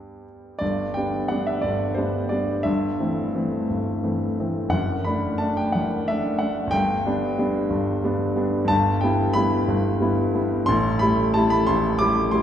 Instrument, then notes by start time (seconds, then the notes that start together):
grand piano
Already playing: G2 G3 B3 D4 G4
0.59 G1 G2 D5
0.94 G3 B3 D4 G5
1.28 G3 B3 D4 F#5
1.47 E5
1.62 G1 G2 D5
1.94 G3 B3 D4 C5
2.29 G3 B3 D4 D5
2.63 G1 G2 E5
3.00 E3 A3 C4
3.35 E3 A3 C4
3.70 G1 G2
4.03 E3 A3 C4
4.40 E3 A3 C4
4.69 F#1 F#2 F#5
5.05 A3 D4 B5
5.38 A3 D4 A5
5.57 G5
5.72 F#1 F#2 F#5
6.08 A3 D4 E5
6.39 A3 D4 F#5
6.67 G1 G5
6.73 G2
7.07 G3 B3 D4
7.38 G3 B3 D4
7.70 G1 G2
8.04 G3 B3 D4
8.36 G3 B3 D4
8.65 G2 A5
8.71 G1
9.01 G3 B3 E4 G5
9.33 G3 B3 E4 B5
9.68 G1 G2
10.00 G3 B3 E4
10.34 G3 B3 E4
10.66 A1 A2 C6
10.99 G3 A3 E4 B5
11.34 G3 A3 E4 A5
11.50 B5
11.67 A1 A2 C6
11.99 G3 A3 E4 D6
12.31 G3 A3 E4 C6